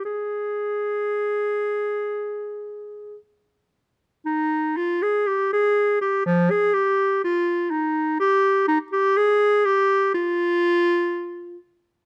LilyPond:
\new Staff \with { instrumentName = "Clarinet" } { \time 4/4 \key ees \mixolydian \tempo 4 = 61 aes'2. r4 | \key f \dorian ees'8 f'16 aes'16 g'16 aes'8 g'16 f16 aes'16 g'8 f'8 ees'8 | g'8 ees'16 g'16 aes'8 g'8 f'4. r8 | }